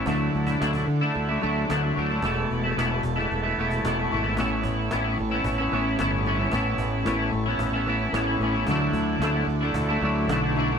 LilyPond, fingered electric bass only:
\new Staff \with { instrumentName = "Fingered electric bass" } { \clef bass \time 4/4 \key a \major \tempo 4 = 111 d,8 d,8 d,8 d8 d,8 d,8 d,8 d,8 | e,,8 e,,8 e,,8 e,,8 e,,8 e,,8 e,,8 gis,,8 | a,,8 a,,8 a,,8 a,,8 a,,8 a,,8 g,,4 | a,,8 a,,8 a,,8 a,,8 a,,4 a,,8 a,,8 |
d,8 d,8 d,8 d,8 d,8 d,8 b,,4 | }